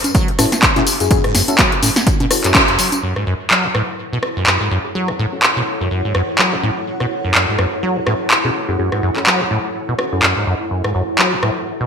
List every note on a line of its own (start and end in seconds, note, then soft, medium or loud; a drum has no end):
0.04 closed hi-hat medium
0.04 tambourine soft
0.04 high conga medium
0.15 0.30 F#3 loud
0.15 kick loud
0.15 closed hi-hat medium
0.15 tambourine soft
0.28 0.32 A2 medium
0.28 closed hi-hat soft
0.39 0.46 A2 loud
0.39 0.50 C#4 medium
0.39 0.50 E4 medium
0.39 0.50 F#4 medium
0.39 0.50 A4 medium
0.39 cross-stick medium
0.39 open hi-hat loud
0.39 tambourine medium
0.39 high conga medium
0.52 snare medium
0.52 closed hi-hat medium
0.52 tambourine soft
0.63 kick loud
0.63 clap loud
0.63 closed hi-hat medium
0.63 tambourine soft
0.76 0.82 B2 loud
0.76 0.82 C#4 loud
0.76 0.82 E4 medium
0.76 0.82 F#4 medium
0.76 0.82 G#4 loud
0.76 snare soft
0.76 closed hi-hat soft
0.76 high conga medium
0.87 open hi-hat medium
0.87 tambourine medium
1.00 1.09 F#2 medium
1.00 1.09 C#4 medium
1.00 1.09 E4 medium
1.00 1.09 F#4 medium
1.00 1.09 G#4 medium
1.00 closed hi-hat medium
1.00 tambourine soft
1.11 1.18 C#4 medium
1.11 1.18 E4 medium
1.11 1.18 F#4 medium
1.11 1.18 G#4 medium
1.11 kick loud
1.11 closed hi-hat medium
1.11 tambourine soft
1.11 high conga medium
1.24 1.33 G#2 medium
1.24 cross-stick medium
1.24 closed hi-hat soft
1.35 1.42 F#2 loud
1.35 snare medium
1.35 open hi-hat loud
1.35 tambourine medium
1.48 1.54 C#4 medium
1.48 1.54 E4 medium
1.48 1.54 F#4 medium
1.48 1.54 A4 loud
1.48 closed hi-hat medium
1.48 tambourine soft
1.48 high conga medium
1.59 1.74 F#3 loud
1.59 kick loud
1.59 snare medium
1.59 clap loud
1.59 closed hi-hat medium
1.59 tambourine soft
1.72 1.76 A2 medium
1.72 closed hi-hat soft
1.83 1.90 A2 loud
1.83 open hi-hat loud
1.83 tambourine medium
1.83 high conga medium
1.96 snare medium
1.96 closed hi-hat medium
1.96 tambourine soft
2.07 kick loud
2.07 closed hi-hat medium
2.07 tambourine soft
2.20 2.26 B2 loud
2.20 closed hi-hat soft
2.20 high conga medium
2.31 2.42 C#4 medium
2.31 2.42 E4 medium
2.31 2.42 F#4 medium
2.31 2.42 A4 medium
2.31 cross-stick medium
2.31 open hi-hat loud
2.31 tambourine medium
2.44 2.53 F#2 medium
2.44 2.50 C#4 medium
2.44 2.50 E4 medium
2.44 2.50 F#4 medium
2.44 2.50 A4 loud
2.44 clap soft
2.44 closed hi-hat medium
2.44 tambourine soft
2.55 2.62 C#3 medium
2.55 2.62 C#4 medium
2.55 2.62 E4 medium
2.55 2.62 F#4 medium
2.55 2.62 A4 medium
2.55 kick loud
2.55 clap loud
2.55 closed hi-hat medium
2.55 tambourine soft
2.55 high conga medium
2.68 2.77 F#1 loud
2.68 closed hi-hat soft
2.79 2.90 F#3 medium
2.79 open hi-hat loud
2.79 tambourine medium
2.92 closed hi-hat medium
2.92 tambourine soft
2.92 high conga medium
3.03 3.14 F#2 medium
3.03 11.87 E4 medium
3.16 3.25 G#2 medium
3.16 cross-stick medium
3.27 3.34 F#2 loud
3.31 11.87 A4 medium
3.51 3.66 F#3 loud
3.51 11.87 F#5 medium
3.51 clap loud
3.64 3.68 A2 medium
3.69 11.67 C#5 medium
3.75 3.82 A2 loud
3.75 cross-stick medium
4.13 4.18 B2 loud
4.23 4.34 C#4 medium
4.23 4.34 E4 medium
4.23 4.34 F#4 medium
4.23 4.34 A4 medium
4.23 cross-stick medium
4.36 4.45 F#2 medium
4.47 4.58 F#2 medium
4.47 clap loud
4.60 4.69 G#2 medium
4.60 4.66 C#4 medium
4.60 4.66 E4 medium
4.60 4.66 F#4 medium
4.60 4.66 G#4 loud
4.71 4.78 F#2 loud
4.84 4.93 C#4 medium
4.84 4.93 E4 medium
4.84 4.93 F#4 medium
4.84 4.93 G#4 medium
4.95 5.10 F#3 loud
4.95 5.02 C#4 medium
4.95 5.02 E4 medium
4.95 5.02 F#4 medium
4.95 5.02 G#4 medium
5.08 5.12 A2 medium
5.08 cross-stick medium
5.19 5.26 A2 loud
5.32 5.38 C#4 medium
5.32 5.38 E4 medium
5.32 5.38 F#4 medium
5.32 5.38 A4 loud
5.43 clap loud
5.56 5.62 B2 medium
5.81 5.89 F#2 medium
5.91 6.02 F#2 medium
6.05 6.13 G#2 medium
6.15 6.22 F#2 loud
6.15 cross-stick medium
6.39 6.54 F#3 loud
6.39 clap loud
6.52 6.56 A2 medium
6.52 6.58 C#4 medium
6.52 6.58 E4 medium
6.52 6.58 F#4 medium
6.52 6.58 A4 medium
6.63 6.70 A2 loud
6.63 6.74 C#4 medium
6.63 6.74 E4 medium
6.63 6.74 F#4 medium
6.63 6.74 A4 medium
7.00 7.06 B2 loud
7.00 cross-stick medium
7.24 7.33 F#2 medium
7.35 7.46 F#2 medium
7.35 clap loud
7.49 7.57 G#2 medium
7.59 7.66 F#2 loud
7.59 cross-stick medium
7.83 7.98 F#3 loud
7.97 8.00 A2 medium
8.07 8.14 A2 loud
8.07 8.18 C#4 medium
8.07 8.18 E4 medium
8.07 8.18 F#4 medium
8.07 8.18 A4 medium
8.07 cross-stick medium
8.31 clap loud
8.44 8.50 B2 loud
8.44 8.50 C#4 medium
8.44 8.50 E4 medium
8.44 8.50 F#4 medium
8.44 8.50 G#4 loud
8.68 8.77 F#2 medium
8.68 8.77 C#4 medium
8.68 8.77 E4 medium
8.68 8.77 F#4 medium
8.68 8.77 G#4 medium
8.79 8.90 F#2 medium
8.79 8.86 C#4 medium
8.79 8.86 E4 medium
8.79 8.86 F#4 medium
8.79 8.86 G#4 loud
8.92 9.01 G#2 medium
8.92 cross-stick medium
9.03 9.10 F#2 medium
9.16 9.22 C#4 medium
9.16 9.22 E4 medium
9.16 9.22 F#4 medium
9.16 9.22 A4 medium
9.16 clap soft
9.27 9.42 F#3 loud
9.27 clap loud
9.40 9.44 A2 medium
9.51 9.58 A2 loud
9.88 9.94 B2 loud
9.99 10.10 C#4 medium
9.99 10.10 E4 medium
9.99 10.10 F#4 medium
9.99 10.10 A4 medium
9.99 cross-stick medium
10.12 10.21 F#2 medium
10.12 10.18 C#4 medium
10.12 10.18 E4 medium
10.12 10.18 F#4 medium
10.12 10.18 A4 medium
10.23 10.34 F#2 medium
10.23 10.30 C#4 medium
10.23 10.30 E4 medium
10.23 10.30 F#4 medium
10.23 10.30 A4 medium
10.23 clap loud
10.37 10.45 G#2 medium
10.47 10.54 F#2 loud
10.71 10.82 F#2 medium
10.84 10.93 G#2 medium
10.84 cross-stick medium
10.95 11.02 F#2 medium
11.19 11.34 F#3 loud
11.19 clap loud
11.32 11.36 A2 medium
11.43 11.50 A2 loud
11.43 cross-stick medium
11.54 11.87 B4 medium
11.80 11.86 B2 loud